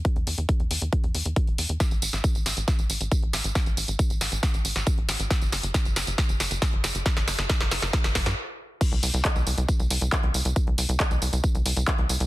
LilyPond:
<<
  \new Staff \with { instrumentName = "Analog synth bass" } { \clef bass \time 4/4 \key a \minor \tempo 4 = 137 r16 e,16 e,16 e,16 r16 e,16 e,16 e,16 r16 e,16 e,16 e,16 r16 e,,16 e,16 e,16 | r16 a,,16 a,,16 a,,16 r16 a,,16 a,,16 a,,16 r16 a,,16 a,,16 a,,16 r16 a,,16 a,,16 a,,16 | r16 a,,16 a,,16 a,,16 r16 a,,16 a,,16 a,,16 r16 a,,16 a,,16 a,,16 r16 a,,16 a,,16 a,,16 | r16 g,,16 g,,16 g,,16 r16 g,,16 g,,16 g,,16 r16 g,,16 g,,16 g,,16 r16 g,,16 g,,16 g,,16 |
r16 g,,16 g,,16 g,,16 r16 g,,16 g,,16 g,,16 r16 g,,16 g,,16 g,16 r4 | r16 c,16 c,16 c,16 r16 c,16 c,16 c,16 r16 c,16 c,16 c,16 r16 c,16 c,16 c,16 | r16 c,16 c,16 c,16 r16 c,16 c,16 c,16 r16 c,16 c,16 c,16 r16 c,16 c,16 c,16 | }
  \new DrumStaff \with { instrumentName = "Drums" } \drummode { \time 4/4 <hh bd>16 hh16 hho16 hh16 <hh bd>16 hh16 hho16 hh16 <hh bd>16 hh16 hho16 hh16 <hh bd>16 hh16 hho16 hh16 | <hh bd sn tamb>16 <hh tamb>16 <hho tamb>16 <hh sn tamb>16 <hh bd tamb>16 <hh tamb>16 <hho sn tamb>16 <hh tamb>16 <hh bd sn tamb>16 <hh tamb>16 <hho tamb>16 <hh tamb>16 <hh bd tamb>16 hh16 <hho sn tamb>16 <hh tamb>16 | <hh bd sn tamb>16 <hh tamb>16 <hho tamb>16 <hh tamb>16 <hh bd tamb>16 <hh tamb>16 <hho sn tamb>16 <hh tamb>16 <hh bd sn tamb>16 <hh tamb>16 <hho tamb>16 <hh sn tamb>16 <hh bd tamb>16 hh16 <hho sn tamb>16 <hh tamb>16 | <hh bd sn tamb>16 <hh tamb>16 <hho sn tamb>16 <hh tamb>16 <hh bd sn tamb>16 <hh tamb>16 <hho sn tamb>16 <hh tamb>16 <hh bd sn tamb>16 <hh tamb>16 <hho sn tamb>16 <hh tamb>16 <hh bd sn tamb>16 hh16 <hho sn tamb>16 <hh tamb>16 |
<hh bd sn tamb>16 <hh sn tamb>16 <hho sn tamb>16 <hh sn tamb>16 <hh bd sn tamb>16 <hh sn tamb>16 <hho sn tamb>16 <hh sn tamb>16 <hh bd sn tamb>16 <hh sn tamb>16 <hho bd sn tamb>16 <hh sn tamb>16 r4 | <cymc hh bd tamb>16 hh16 <hho tamb>16 <hh tamb>16 <hc hh bd tamb>16 <hh tamb>16 <hho tamb>16 <hh tamb>16 <hh bd tamb>16 <hh tamb>16 <hho tamb>16 <hh tamb>16 <hc hh bd tamb>16 hh16 <hho tamb>16 <hh tamb>16 | <hh bd tamb>16 hh16 <hho tamb>16 <hh tamb>16 <hc hh bd tamb>16 <hh tamb>16 <hho tamb>16 <hh tamb>16 <hh bd tamb>16 <hh tamb>16 <hho tamb>16 <hh tamb>16 <hc hh bd tamb>16 hh16 <hho tamb>16 <hh tamb>16 | }
>>